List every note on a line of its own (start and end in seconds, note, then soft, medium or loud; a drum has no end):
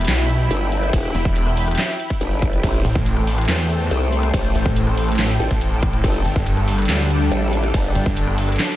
0.00 2.60 E4 medium
0.00 2.60 E5 medium
0.00 2.60 G5 medium
0.00 2.60 B5 medium
0.00 closed hi-hat medium
0.05 0.49 B1 loud
0.05 snare loud
0.05 clap loud
0.05 closed hi-hat medium
0.08 closed hi-hat medium
0.08 ride medium
0.30 closed hi-hat medium
0.51 0.92 G1 loud
0.51 closed hi-hat medium
0.51 ride soft
0.72 closed hi-hat medium
0.83 cross-stick medium
0.83 closed hi-hat soft
0.93 1.13 E1 medium
0.93 kick loud
0.93 closed hi-hat medium
0.93 ride medium
1.15 1.77 E1 loud
1.15 closed hi-hat medium
1.25 kick loud
1.36 closed hi-hat medium
1.36 ride soft
1.47 cross-stick medium
1.57 open hi-hat medium
1.68 cross-stick medium
1.68 closed hi-hat soft
1.71 closed hi-hat medium
1.75 snare loud
1.75 clap loud
1.75 closed hi-hat medium
1.78 closed hi-hat medium
1.78 ride medium
2.00 closed hi-hat medium
2.10 kick medium
2.21 2.62 G1 loud
2.21 closed hi-hat medium
2.21 ride soft
2.42 kick loud
2.42 closed hi-hat medium
2.53 closed hi-hat soft
2.63 2.83 A1 medium
2.63 6.00 A3 medium
2.63 8.76 A4 medium
2.63 6.00 C5 medium
2.63 8.76 G5 medium
2.63 kick loud
2.63 closed hi-hat medium
2.63 ride medium
2.85 3.47 A1 loud
2.85 closed hi-hat medium
2.95 kick loud
3.06 closed hi-hat medium
3.06 ride soft
3.17 cross-stick medium
3.27 open hi-hat medium
3.38 cross-stick medium
3.38 closed hi-hat soft
3.41 closed hi-hat medium
3.45 3.89 E2 loud
3.45 snare loud
3.45 clap medium
3.45 closed hi-hat medium
3.49 closed hi-hat medium
3.49 ride medium
3.70 closed hi-hat medium
3.91 4.32 C2 loud
3.91 closed hi-hat medium
3.91 ride soft
4.12 closed hi-hat medium
4.23 cross-stick medium
4.23 closed hi-hat soft
4.34 4.53 A1 medium
4.34 kick loud
4.34 closed hi-hat medium
4.34 ride medium
4.55 5.17 A1 loud
4.55 closed hi-hat medium
4.66 kick loud
4.76 closed hi-hat medium
4.76 ride soft
4.87 cross-stick medium
4.98 open hi-hat medium
5.08 cross-stick medium
5.08 closed hi-hat soft
5.12 closed hi-hat medium
5.15 5.38 A1 medium
5.15 snare loud
5.15 clap medium
5.15 closed hi-hat medium
5.19 closed hi-hat medium
5.19 ride medium
5.40 5.49 A1 loud
5.40 closed hi-hat soft
5.51 6.02 A1 loud
5.51 kick medium
5.61 closed hi-hat medium
5.61 ride soft
5.83 kick loud
5.83 closed hi-hat medium
5.93 closed hi-hat soft
6.04 6.23 G1 medium
6.04 8.76 G3 medium
6.04 8.76 D4 medium
6.04 kick loud
6.04 closed hi-hat medium
6.04 ride medium
6.25 6.87 G1 loud
6.25 closed hi-hat medium
6.36 kick loud
6.46 closed hi-hat medium
6.46 ride soft
6.57 cross-stick medium
6.68 open hi-hat loud
6.78 cross-stick medium
6.78 closed hi-hat soft
6.82 closed hi-hat medium
6.85 7.30 D2 medium
6.85 snare loud
6.85 clap medium
6.85 closed hi-hat medium
6.89 closed hi-hat medium
6.89 ride medium
7.10 closed hi-hat medium
7.32 7.72 A1 loud
7.32 closed hi-hat medium
7.32 ride soft
7.53 closed hi-hat medium
7.64 cross-stick medium
7.64 closed hi-hat soft
7.74 7.94 G1 loud
7.74 kick loud
7.74 closed hi-hat medium
7.74 ride medium
7.95 8.58 G1 loud
7.95 closed hi-hat medium
8.06 kick loud
8.17 closed hi-hat medium
8.17 ride soft
8.27 cross-stick medium
8.38 open hi-hat loud
8.49 cross-stick medium
8.49 closed hi-hat soft
8.52 closed hi-hat medium
8.56 snare loud
8.56 clap medium
8.56 closed hi-hat medium
8.59 closed hi-hat medium
8.59 ride medium